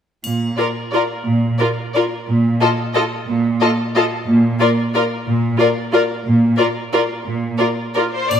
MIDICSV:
0, 0, Header, 1, 6, 480
1, 0, Start_track
1, 0, Key_signature, -2, "major"
1, 0, Tempo, 337079
1, 342, Time_signature, 3, 2, 24, 8
1, 5638, Tempo, 328228
1, 9478, Tempo, 344432
1, 12006, End_track
2, 0, Start_track
2, 0, Title_t, "Violin section"
2, 0, Program_c, 0, 48
2, 828, Note_on_c, 0, 74, 29
2, 942, Note_off_c, 0, 74, 0
2, 1316, Note_on_c, 0, 74, 31
2, 1430, Note_off_c, 0, 74, 0
2, 2260, Note_on_c, 0, 74, 32
2, 2374, Note_off_c, 0, 74, 0
2, 2768, Note_on_c, 0, 74, 32
2, 2882, Note_off_c, 0, 74, 0
2, 3715, Note_on_c, 0, 75, 35
2, 3829, Note_off_c, 0, 75, 0
2, 4196, Note_on_c, 0, 75, 32
2, 4309, Note_off_c, 0, 75, 0
2, 5134, Note_on_c, 0, 75, 41
2, 5248, Note_off_c, 0, 75, 0
2, 5633, Note_on_c, 0, 75, 38
2, 5749, Note_off_c, 0, 75, 0
2, 6589, Note_on_c, 0, 74, 40
2, 6706, Note_off_c, 0, 74, 0
2, 7073, Note_on_c, 0, 74, 37
2, 7190, Note_off_c, 0, 74, 0
2, 8031, Note_on_c, 0, 74, 42
2, 8148, Note_off_c, 0, 74, 0
2, 8520, Note_on_c, 0, 74, 38
2, 8637, Note_off_c, 0, 74, 0
2, 9471, Note_on_c, 0, 74, 37
2, 9583, Note_off_c, 0, 74, 0
2, 9949, Note_on_c, 0, 74, 40
2, 10060, Note_off_c, 0, 74, 0
2, 10868, Note_on_c, 0, 74, 33
2, 10980, Note_off_c, 0, 74, 0
2, 11388, Note_on_c, 0, 74, 34
2, 11490, Note_off_c, 0, 74, 0
2, 11634, Note_on_c, 0, 72, 49
2, 11860, Note_off_c, 0, 72, 0
2, 11863, Note_on_c, 0, 74, 49
2, 12006, Note_off_c, 0, 74, 0
2, 12006, End_track
3, 0, Start_track
3, 0, Title_t, "Violin section"
3, 0, Program_c, 1, 48
3, 837, Note_on_c, 1, 70, 30
3, 951, Note_off_c, 1, 70, 0
3, 1344, Note_on_c, 1, 70, 32
3, 1458, Note_off_c, 1, 70, 0
3, 2272, Note_on_c, 1, 70, 28
3, 2385, Note_off_c, 1, 70, 0
3, 2779, Note_on_c, 1, 70, 32
3, 2893, Note_off_c, 1, 70, 0
3, 3722, Note_on_c, 1, 69, 35
3, 3836, Note_off_c, 1, 69, 0
3, 4203, Note_on_c, 1, 69, 33
3, 4317, Note_off_c, 1, 69, 0
3, 5152, Note_on_c, 1, 69, 33
3, 5266, Note_off_c, 1, 69, 0
3, 5647, Note_on_c, 1, 69, 35
3, 5764, Note_off_c, 1, 69, 0
3, 6593, Note_on_c, 1, 70, 39
3, 6710, Note_off_c, 1, 70, 0
3, 7088, Note_on_c, 1, 70, 38
3, 7205, Note_off_c, 1, 70, 0
3, 8032, Note_on_c, 1, 70, 37
3, 8149, Note_off_c, 1, 70, 0
3, 8530, Note_on_c, 1, 70, 38
3, 8647, Note_off_c, 1, 70, 0
3, 9477, Note_on_c, 1, 70, 35
3, 9589, Note_off_c, 1, 70, 0
3, 9963, Note_on_c, 1, 70, 35
3, 10075, Note_off_c, 1, 70, 0
3, 10868, Note_on_c, 1, 70, 32
3, 10980, Note_off_c, 1, 70, 0
3, 11381, Note_on_c, 1, 70, 31
3, 11492, Note_off_c, 1, 70, 0
3, 12006, End_track
4, 0, Start_track
4, 0, Title_t, "Viola section"
4, 0, Program_c, 2, 48
4, 821, Note_on_c, 2, 65, 33
4, 935, Note_off_c, 2, 65, 0
4, 1321, Note_on_c, 2, 65, 30
4, 1435, Note_off_c, 2, 65, 0
4, 2290, Note_on_c, 2, 65, 31
4, 2403, Note_off_c, 2, 65, 0
4, 2790, Note_on_c, 2, 65, 31
4, 2904, Note_off_c, 2, 65, 0
4, 3725, Note_on_c, 2, 65, 34
4, 3839, Note_off_c, 2, 65, 0
4, 4211, Note_on_c, 2, 65, 34
4, 4325, Note_off_c, 2, 65, 0
4, 5146, Note_on_c, 2, 65, 38
4, 5260, Note_off_c, 2, 65, 0
4, 5632, Note_on_c, 2, 65, 38
4, 5749, Note_off_c, 2, 65, 0
4, 6583, Note_on_c, 2, 65, 40
4, 6700, Note_off_c, 2, 65, 0
4, 7080, Note_on_c, 2, 65, 38
4, 7197, Note_off_c, 2, 65, 0
4, 8015, Note_on_c, 2, 65, 42
4, 8132, Note_off_c, 2, 65, 0
4, 8511, Note_on_c, 2, 65, 35
4, 8628, Note_off_c, 2, 65, 0
4, 9474, Note_on_c, 2, 65, 37
4, 9586, Note_off_c, 2, 65, 0
4, 9974, Note_on_c, 2, 65, 36
4, 10085, Note_off_c, 2, 65, 0
4, 10887, Note_on_c, 2, 65, 35
4, 10998, Note_off_c, 2, 65, 0
4, 11398, Note_on_c, 2, 65, 33
4, 11510, Note_off_c, 2, 65, 0
4, 12006, End_track
5, 0, Start_track
5, 0, Title_t, "Cello section"
5, 0, Program_c, 3, 48
5, 348, Note_on_c, 3, 46, 39
5, 741, Note_off_c, 3, 46, 0
5, 1776, Note_on_c, 3, 46, 38
5, 2178, Note_off_c, 3, 46, 0
5, 3241, Note_on_c, 3, 46, 44
5, 3630, Note_off_c, 3, 46, 0
5, 4669, Note_on_c, 3, 46, 46
5, 5058, Note_off_c, 3, 46, 0
5, 6102, Note_on_c, 3, 46, 47
5, 6502, Note_off_c, 3, 46, 0
5, 7546, Note_on_c, 3, 46, 48
5, 7941, Note_off_c, 3, 46, 0
5, 8994, Note_on_c, 3, 46, 47
5, 9392, Note_off_c, 3, 46, 0
5, 10412, Note_on_c, 3, 46, 44
5, 10800, Note_off_c, 3, 46, 0
5, 11890, Note_on_c, 3, 46, 46
5, 12006, Note_off_c, 3, 46, 0
5, 12006, End_track
6, 0, Start_track
6, 0, Title_t, "Drums"
6, 340, Note_on_c, 9, 81, 24
6, 482, Note_off_c, 9, 81, 0
6, 11882, Note_on_c, 9, 81, 28
6, 12006, Note_off_c, 9, 81, 0
6, 12006, End_track
0, 0, End_of_file